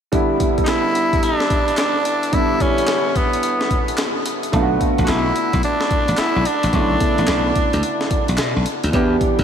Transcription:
0.12 2.28 D3 medium
0.12 2.29 G3 medium
0.12 2.29 B3 medium
0.12 2.30 E4 medium
0.12 kick loud
0.12 closed hi-hat medium
0.40 kick loud
0.40 closed hi-hat medium
0.58 kick medium
0.58 closed hi-hat medium
0.64 0.70 D#4 medium
0.64 clap medium
0.68 1.25 E4 medium
0.68 snare loud
0.68 closed hi-hat medium
0.95 closed hi-hat medium
1.13 kick medium
1.13 closed hi-hat medium
1.23 1.78 D4 loud
1.23 closed hi-hat medium
1.40 snare medium
1.50 kick medium
1.50 closed hi-hat medium
1.68 closed hi-hat medium
1.77 2.35 D4 loud
1.77 snare loud
1.77 clap medium
1.77 closed hi-hat medium
2.05 closed hi-hat medium
2.23 closed hi-hat medium
2.32 4.49 D3 medium
2.32 4.49 G3 medium
2.32 4.49 B3 medium
2.32 2.63 E4 medium
2.32 4.50 E4 medium
2.32 kick loud
2.32 closed hi-hat medium
2.60 3.18 C#4 loud
2.60 kick medium
2.60 closed hi-hat medium
2.78 closed hi-hat soft
2.87 snare loud
2.87 clap medium
2.87 closed hi-hat medium
3.16 3.98 B3 medium
3.16 kick medium
3.16 closed hi-hat medium
3.33 closed hi-hat medium
3.43 closed hi-hat medium
3.61 snare medium
3.71 kick medium
3.71 closed hi-hat medium
3.88 closed hi-hat medium
3.98 snare loud
3.98 clap medium
3.98 closed hi-hat medium
4.26 closed hi-hat medium
4.43 closed hi-hat medium
4.52 4.75 B1 loud
4.52 6.69 D3 medium
4.52 6.69 A3 medium
4.52 6.70 B3 medium
4.52 4.62 F4 medium
4.52 kick loud
4.52 closed hi-hat medium
4.61 6.73 F#4 medium
4.81 kick medium
4.81 closed hi-hat medium
4.98 5.06 A1 medium
4.98 kick medium
4.98 closed hi-hat soft
5.04 5.11 F#4 medium
5.04 clap medium
5.08 5.30 B1 medium
5.08 5.64 E4 loud
5.08 snare loud
5.08 closed hi-hat medium
5.36 closed hi-hat medium
5.53 5.61 B1 medium
5.53 kick medium
5.53 closed hi-hat medium
5.63 6.21 D4 loud
5.63 closed hi-hat medium
5.81 snare medium
5.91 muted slap bass stroke soft
5.91 kick loud
5.91 closed hi-hat medium
6.08 6.16 A1 medium
6.08 closed hi-hat medium
6.17 6.48 E4 loud
6.17 snare loud
6.17 clap medium
6.17 closed hi-hat medium
6.36 6.44 B1 medium
6.45 8.39 D4 medium
6.45 closed hi-hat medium
6.63 6.71 A1 medium
6.63 closed hi-hat medium
6.72 6.95 B1 loud
6.72 6.81 C#3 soft
6.72 8.89 A3 medium
6.72 8.90 B3 medium
6.72 8.90 E4 medium
6.72 kick loud
6.72 closed hi-hat medium
6.79 8.92 D3 medium
7.01 kick loud
7.01 closed hi-hat medium
7.18 7.26 A1 medium
7.18 closed hi-hat soft
7.27 7.50 B1 medium
7.27 snare loud
7.27 clap medium
7.27 closed hi-hat medium
7.56 kick medium
7.56 closed hi-hat medium
7.73 7.81 D2 medium
7.73 closed hi-hat medium
7.83 closed hi-hat medium
8.01 snare medium
8.11 muted slap bass stroke soft
8.11 kick medium
8.11 closed hi-hat medium
8.28 8.37 B1 medium
8.28 closed hi-hat medium
8.38 8.53 B2 medium
8.38 snare loud
8.38 clap medium
8.38 closed hi-hat medium
8.56 8.64 B1 medium
8.66 closed hi-hat medium
8.84 8.92 D2 medium
8.84 closed hi-hat medium
8.92 9.16 E2 loud
8.92 9.44 E3 medium
8.92 9.44 B3 medium
8.92 9.44 D4 medium
8.92 9.44 G4 medium
8.92 kick loud
8.92 closed hi-hat medium
9.21 kick loud
9.21 closed hi-hat medium
9.39 9.44 D2 medium
9.39 kick loud
9.39 closed hi-hat medium

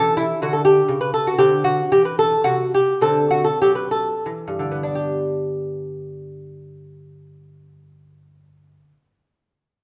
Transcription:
0.00 0.33 E3 medium
0.00 1.37 C#4 soft
0.00 0.17 A4 loud
0.17 0.40 E4 medium
0.42 0.80 D3 medium
0.42 0.54 F#4 medium
0.53 0.64 A4 medium
0.65 1.00 G4 medium
0.88 1.29 C#3 medium
1.01 1.13 B4 medium
1.14 1.27 A4 medium
1.27 1.40 F#4 medium
1.38 1.81 D3 medium
1.38 2.98 C4 soft
1.38 1.64 G4 medium
1.64 1.90 F#4 medium
1.92 2.35 E3 medium
1.92 2.05 G4 medium
2.05 2.18 B4 medium
2.19 2.45 A4 medium
2.44 2.90 C3 medium
2.44 2.72 F#4 medium
2.74 3.02 G4 medium
3.01 3.49 D3 medium
3.01 4.92 C4 soft
3.01 3.30 A4 medium
3.31 3.46 F#4 medium
3.44 3.60 A4 medium
3.62 4.13 F#3 soft
3.62 3.75 G4 medium
3.75 3.91 B4 medium
3.91 4.92 A4 medium
4.26 4.82 E3 soft
4.48 8.80 G2 soft
4.59 8.92 D3 soft
4.71 9.04 B3 soft
4.83 9.16 D4 soft
4.95 9.28 G4 soft

